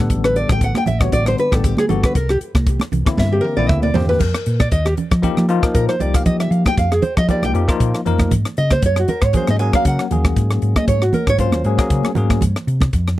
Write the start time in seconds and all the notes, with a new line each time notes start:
Already playing: A2 D3 G3 B3 A4
0.10 A1, kick, closed hi-hat
0.24 B4, cross-stick, closed hi-hat
0.36 D5, closed hi-hat
0.49 A1 G5, kick, cross-stick, closed hi-hat
0.61 F#5, kick, closed hi-hat
0.75 G5, cross-stick, high conga
0.86 A1 E5, closed hi-hat, low conga
1.00 D3 G3 B3 F#4 C#5, kick, cross-stick
1.12 A1 D5, kick, closed hi-hat, high conga
1.25 D3 G3 B3 D4 C5, cross-stick, closed hi-hat
1.38 B4, closed hi-hat
1.51 A1 D3 G3 B3 G4 A4, kick, cross-stick, closed hi-hat
1.64 G4, kick, closed hi-hat
1.77 G#4, cross-stick, closed hi-hat, high conga
1.89 G1 D3 G3 B3 F#4 A4, closed hi-hat, low conga
2.03 B4, kick, cross-stick, closed hi-hat
2.15 C2 A#4, kick, closed hi-hat
2.29 G4, cross-stick, closed hi-hat
2.41 muted fingered electric bass stroke, closed hi-hat
2.55 C2, kick, cross-stick, high conga
2.66 kick, closed hi-hat
2.80 cross-stick, closed hi-hat, high conga
2.92 C2, closed hi-hat, low conga
3.06 D3 A#3 C4 E4, kick, cross-stick, closed hi-hat
3.17 G2 E5, kick, snare, high conga
3.32 D3 A#3 C4 G4
3.41 A#4, high tom
3.57 A#1 D3 A#3 C4 E4 D5, low conga
3.69 D2 E5, kick, mid tom
3.82 D5, mid tom, high conga
3.94 E2 D3 A#3 C4 G4 C5, floor tom, low conga
4.09 B4, floor tom
4.20 F2 A#4, kick, crash, low conga
4.34 cross-stick, closed hi-hat
4.46 A#2, closed hi-hat
4.60 D5, kick, cross-stick, closed hi-hat, high conga
4.71 D#2 D#5, kick, closed hi-hat
4.85 G4, cross-stick, closed hi-hat
4.97 closed hi-hat, low conga
5.11 F3, kick, cross-stick, closed hi-hat
5.22 F3 A#3 D#4 G4, kick, closed hi-hat, low conga
5.37 F3, cross-stick, closed hi-hat, high conga
5.49 F3 A#3 D#4 F4, closed hi-hat
5.62 F3 A#3 D#4 A#4, kick, cross-stick
5.74 A#2 A#4, kick, closed hi-hat
5.89 C5, cross-stick, closed hi-hat
5.99 C2 F3 A#3 D#4 G4 D5, closed hi-hat, low conga
6.14 F5, kick, cross-stick, closed hi-hat, high conga
6.26 F3 D#5, kick, closed hi-hat, low conga
6.40 E5, cross-stick, closed hi-hat
6.51 F3 F5, closed hi-hat
6.65 G5, kick, cross-stick, closed hi-hat, high conga
6.78 F2 F5, kick, closed hi-hat
6.92 G#4, cross-stick, closed hi-hat
7.02 C5, closed hi-hat, low conga
7.17 F3 D#5, kick, cross-stick, closed hi-hat
7.28 F3 A#3 D#4 G4 D5, kick, closed hi-hat, low conga
7.42 C2 G5, cross-stick, closed hi-hat, high conga
7.54 F2 F3 A#3 D#4 G4, closed hi-hat
7.68 F3 A#3 D#4 F4, kick, cross-stick, closed hi-hat
7.80 A#2, kick, closed hi-hat
7.94 cross-stick, closed hi-hat
8.05 F2 F3 A#3 D#4 A#4, closed hi-hat, low conga
8.19 kick, cross-stick, closed hi-hat, high conga
8.31 G#2, kick, closed hi-hat, low conga
8.45 cross-stick, closed hi-hat
8.57 C#3 D#5, closed hi-hat
8.70 C5, kick, cross-stick, closed hi-hat, high conga
8.82 F#2 C#5, kick, closed hi-hat
8.96 F#4, cross-stick, closed hi-hat
9.08 A#4, closed hi-hat, low conga
9.21 G#2 C#5, kick, cross-stick, closed hi-hat
9.33 F#3 A#3 C#4 G#4 C5, kick, closed hi-hat, low conga
9.47 G#2 D#5, cross-stick, closed hi-hat, high conga
9.59 F#3 A#3 C#4 G#4 G#5, closed hi-hat
9.73 F#3 A#3 C#4 A#4 F5, kick, cross-stick
9.85 C#3 F#5, kick, closed hi-hat
9.99 cross-stick, closed hi-hat
10.10 D#2 F#3 A#3 C#4 G#4, closed hi-hat, low conga
10.25 kick, cross-stick, closed hi-hat, high conga
10.36 G#2, kick, closed hi-hat
10.50 cross-stick, closed hi-hat
10.62 G#2, closed hi-hat
10.76 D#5, kick, cross-stick, closed hi-hat, high conga
10.88 G#2 C#5, kick, closed hi-hat
11.02 F#4, cross-stick, closed hi-hat
11.13 A#4, closed hi-hat, high conga, low conga
11.27 G#2 C#5, kick, cross-stick, closed hi-hat
11.38 F#3 A#3 C#4 F4 C5, kick, closed hi-hat, low conga
11.52 D#2, cross-stick, closed hi-hat, high conga
11.64 G#2 F#3 A#3 C#4 G#4, closed hi-hat
11.78 F#3 A#3 C#4 G#4, kick, cross-stick, closed hi-hat
11.90 C#3, kick, closed hi-hat
12.03 cross-stick, closed hi-hat, high conga
12.15 G#2 F#3 A#3 C#4 G#4, closed hi-hat, low conga
12.30 kick, cross-stick, closed hi-hat, high conga
12.41 G2, kick, closed hi-hat, low conga
12.56 cross-stick, closed hi-hat
12.67 C3, closed hi-hat
12.80 kick, cross-stick, closed hi-hat, high conga
12.93 F2, kick, closed hi-hat
13.07 cross-stick, closed hi-hat